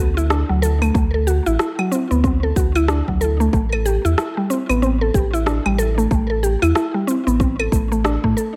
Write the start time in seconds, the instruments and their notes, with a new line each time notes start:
0.00 sub bass D2
0.17 synth pluck E4, cabasa
0.30 synth pluck D4, cross-stick, cabasa
0.49 sub bass D2, synth pluck F#3
0.62 synth pluck A4, cabasa
0.82 synth pluck A3, cabasa, claves
0.94 sub bass D2, synth pluck A3, kick, cabasa
1.14 synth pluck A4
1.27 synth pluck F#4, cabasa
1.46 sub bass A1, synth pluck E4, cabasa
1.59 synth pluck E4, cross-stick, cabasa
1.79 synth pluck F#3, claves
1.92 synth pluck C4, cabasa
2.11 sub bass D2, synth pluck B3, cabasa
2.24 synth pluck C4, kick, cabasa
2.43 synth pluck A4
2.56 sub bass D2, synth pluck F#4, kick, cabasa
2.75 synth pluck E4, cabasa, claves
2.88 synth pluck D4, cross-stick, cabasa
3.08 sub bass D2, synth pluck F#3, kick
3.21 synth pluck A4, cabasa
3.40 synth pluck A3, cabasa
3.53 sub bass A1, synth pluck A3, kick, cabasa
3.73 synth pluck A4, claves
3.86 synth pluck G4, cabasa
4.05 sub bass E2, synth pluck E4, cabasa
4.18 synth pluck E4, cross-stick, cabasa
4.37 synth pluck G3
4.50 synth pluck C4, cabasa
4.69 sub bass A1, synth pluck B3, cabasa, claves
4.82 synth pluck C4, cabasa
5.01 synth pluck A4
5.14 sub bass A1, synth pluck G4, kick, cabasa
5.33 synth pluck E4, cabasa
5.46 synth pluck D4, cross-stick, cabasa
5.66 sub bass A1, synth pluck G3, claves
5.78 synth pluck A4, cabasa
5.98 synth pluck A3, cabasa
6.11 sub bass A1, synth pluck A3, kick, cabasa
6.30 synth pluck A4
6.43 synth pluck G4, cabasa
6.62 sub bass E2, synth pluck E4, cabasa, claves
6.75 synth pluck E4, cross-stick, cabasa
6.94 synth pluck G3
7.07 synth pluck C4, cabasa
7.27 sub bass A1, synth pluck B3, cabasa
7.40 synth pluck C4, kick, cabasa
7.59 synth pluck A4, claves
7.72 sub bass A1, synth pluck A3, kick, cabasa
7.92 synth pluck A3, cabasa
8.04 synth pluck D4, cross-stick, cabasa
8.24 sub bass A2, synth pluck A3, kick
8.37 synth pluck A4, cabasa